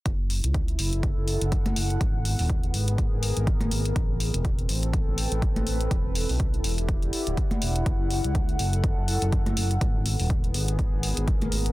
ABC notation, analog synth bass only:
X:1
M:4/4
L:1/16
Q:"Swing 16ths" 1/4=123
K:G#phr
V:1 name="Analog synth bass" clef=bass
F,,,3 C,,3 F,,,3 F,,,2 F,,,3 F,,,2 | G,,,3 D,,,3 G,,,3 G,,,2 G,,,3 G,,,2 | A,,,3 E,,,3 A,,,3 A,,,2 A,,,3 A,,,2 | E,,,3 B,,,3 E,,,3 E,,, z =D,,, z2 E,,,2 |
F,,,3 C,,3 F,,,3 F,,,2 F,,,3 F,,,2 | G,,,3 D,,,3 G,,,3 G,,,2 G,,,3 G,,,2 |]